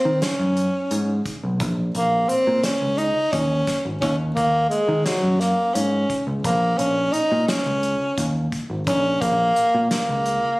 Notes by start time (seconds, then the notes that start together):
Already playing: C4
0.05 D#3
0.22 C#4, snare, closed hi-hat
0.39 F#2
0.57 closed hi-hat
0.91 G#2, closed hi-hat
1.26 kick, closed hi-hat
1.44 B1
1.60 A#1, kick, closed hi-hat
1.95 A#1 A#3, closed hi-hat
2.29 C4, closed hi-hat
2.47 A#2
2.63 C#4, snare, closed hi-hat
2.82 C#2
2.98 D#4, closed hi-hat
3.32 D#2 C#4, kick, closed hi-hat
3.67 kick, snare, closed hi-hat
3.85 G#1
4.01 D#2 C#4, kick, closed hi-hat
4.35 D#2 A#3, kick, closed hi-hat
4.70 G#3, closed hi-hat
4.88 D#3
5.05 F#3, snare, closed hi-hat
5.23 F#2
5.40 A#3, snare, closed hi-hat
5.74 G#2 C#4, closed hi-hat
6.10 kick, closed hi-hat
6.27 C#2
6.43 A#1 A#3, kick, closed hi-hat
6.78 A#1 C#4, closed hi-hat
7.12 D#4, closed hi-hat
7.32 A#2
7.48 C#4, snare, closed hi-hat
7.66 C#2
7.83 closed hi-hat
8.18 D#2, kick, closed hi-hat
8.52 kick, closed hi-hat
8.70 G#1
8.87 A#1 C#4, kick, closed hi-hat
9.21 A#1 A#3, kick, closed hi-hat
9.56 closed hi-hat
9.75 A#2
9.90 A#3, snare, closed hi-hat
10.09 C#2
10.26 closed hi-hat